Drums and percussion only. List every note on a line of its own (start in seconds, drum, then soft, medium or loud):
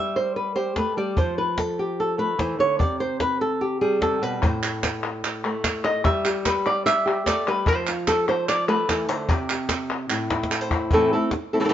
0.76 cajon slap loud
1.17 cajon bass loud
1.58 cajon slap loud
1.78 cajon slap soft
2.39 cajon slap loud
2.80 cajon bass loud
3.20 cajon slap medium
3.61 cajon slap soft
4.02 cajon slap loud
4.43 cajon bass loud
4.63 clap medium
4.83 cajon slap loud
4.83 clap medium
5.03 clap soft
5.23 cajon slap soft
5.23 clap medium
5.44 clap soft
5.64 cajon slap loud
5.64 clap medium
5.84 clap medium
6.05 cajon bass loud
6.25 clap medium
6.46 cajon slap loud
6.46 clap medium
6.66 cajon slap soft
6.66 clap soft
6.87 clap medium
7.26 cajon slap loud
7.26 clap medium
7.47 clap soft
7.66 cajon bass loud
7.87 clap medium
8.07 cajon slap loud
8.07 clap medium
8.28 cajon slap soft
8.28 clap soft
8.49 clap medium
8.89 cajon slap loud
8.89 clap medium
9.09 cajon slap soft
9.29 cajon bass loud
9.50 clap medium
9.69 cajon slap loud
9.69 clap medium
9.90 cajon slap soft
9.90 clap medium
10.10 clap medium
10.30 cajon slap loud
10.30 clap soft
10.43 cajon slap medium
10.51 clap medium
10.71 cajon bass medium
10.71 clap medium
10.91 cajon bass loud
11.31 cajon slap loud